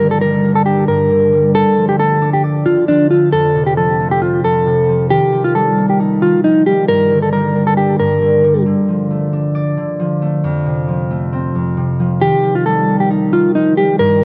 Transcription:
Already playing: G2 A#3 C4
0.00 D3
0.11 A4
0.22 G3 A#4
0.44 A#3
0.56 A4
0.66 D4 G4
0.88 G2 A#4
1.10 D3
1.33 G3
1.55 D3 A4
1.77 F3
1.89 G4
1.99 A3 A4
2.22 D4
2.33 G4
2.44 D5
2.66 D3 F4
2.88 F3 D4
3.10 A3 F4
3.32 F2 A4
3.55 C3
3.66 G4
3.77 F3 A4
3.99 A3
4.11 G4
4.22 C4 F4
4.44 F2 A4
4.66 C3
4.88 F3
5.10 D#3 G4
5.33 F3
5.44 F4
5.55 G3 A4
5.77 A#3
5.89 G4
5.99 D#4
6.22 D#3 F4
6.44 F3 D#4
6.66 G3 G4
6.88 G2 A#4
7.10 D3
7.22 A4
7.33 G3 A#4
7.55 A#3
7.67 A4
7.77 D4 G4
7.99 G2 A#4
8.22 D3
8.44 G3
8.66 D3
8.88 F3
9.11 A3
9.33 D4
9.55 D5
9.77 D3
9.99 F3
10.22 A3
10.44 F2
10.66 C3
10.88 F3
11.11 A3
11.33 C4
11.55 F2
11.77 C3
11.99 F3
12.22 D#3 G4
12.44 F3
12.55 F4
12.66 G3 A4
12.88 A#3
13.00 G4
13.11 D#4
13.33 D#3 F4
13.55 F3 D#4
13.77 G3 G4
13.99 G2 A#4

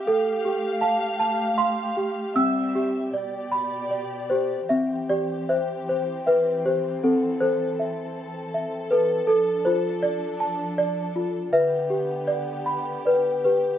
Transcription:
Already playing: G4
0.06 A3 A4 F5
0.45 G4
0.81 F5 A5
1.20 A5
1.58 F5 C6
1.97 G4
2.34 G3 C4 E5 E6
2.75 G4
3.13 B2 G4 D5
3.52 B5
3.91 D5
4.30 G4 C5
4.67 E3 C4 G4 E5
5.09 G4 D5
5.49 C5 E5
5.89 C5
6.26 B4 E5
6.65 G4 C5
7.02 C4 A4
7.40 A4 C5
7.79 E5
8.54 E5
8.91 A4 B4
9.27 F3 D4 A4
9.65 F4 C5
10.03 D5
10.40 A5
10.78 D5
11.16 F4
11.51 D3 B3 G4 B4 E5
11.90 G4
12.27 D5
12.66 B5
13.05 B4 D5
13.44 G4 B4

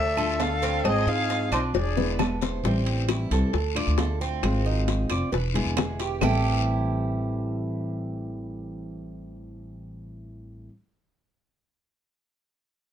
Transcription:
Already playing: D2 A4 D5 E5
0.17 A3 D4 F4 A4, low agogo, claves
0.40 D3 A3 D4 F4 A4 F5, cowbell, low timbale, low agogo, short guiro
0.62 C4, cowbell, short guiro
0.85 G#1 G#3 C4 F4 G#4 D#5, cowbell, low agogo, long guiro, claves
1.07 G#2 D#4 G#4 F5
1.29 cowbell, low timbale, low agogo, short guiro
1.51 B1 C4 D4 D#4 F4 C5, cowbell, low agogo, short guiro, claves
1.74 E1 G#4 D5, muted steel-string acoustic guitar stroke, cowbell, high bongo, long guiro
1.96 D3 G#3 B3 E4 B4, low bongo
2.19 D3 G#3 B3 E4, cowbell, low bongo, low timbale, low agogo, short guiro, claves
2.41 C5, cowbell, low bongo, short guiro
2.64 A1 E3 G3 C4 E4, high bongo, long guiro
2.86 high timbale
3.09 E4, high bongo, high timbale, low timbale, short guiro, claves
3.31 C2 G3 C4 E4 A4, high timbale, short guiro
3.53 D2, muted steel-string acoustic guitar stroke, high bongo, long guiro
3.75 A3 D4 F4 D5, high timbale, claves
3.87 D2
3.98 D3 A3 D4 F4 A4, high bongo, low bongo, high timbale, low timbale, short guiro
4.21 C4, short guiro
4.43 G#1 G#3 C4 F4, high bongo, high timbale, long guiro, claves
4.66 D#4
4.88 high bongo, high timbale, low timbale, short guiro
5.10 F1 C4 F4 D5, high bongo, high timbale, short guiro, claves
5.32 E1 B4, muted steel-string acoustic guitar stroke, high bongo, long guiro
5.54 D3 G#3 B3 E4 G#4, high bongo, high timbale
5.66 E1
5.77 D3 G#3 B3 E4, high bongo, low bongo, high timbale, low timbale, short guiro, claves
5.99 G4, high bongo, high timbale, short guiro
6.20 A1 A2 E3 G3 A3 C4 E4 G4, low bongo, low timbale, long guiro, claves

